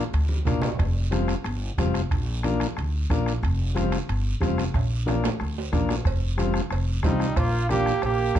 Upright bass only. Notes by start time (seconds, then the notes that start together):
0.13 D2
0.47 A#1
0.79 F1
1.44 G1
1.78 F1
2.11 A#1
2.78 D2
3.10 A#1
3.43 F1
4.09 G1
4.42 F1
4.74 A#1
5.41 D2
5.73 A#1
6.05 F1
6.71 F1
7.04 C2
7.36 A#1
8.03 A#1
8.35 F2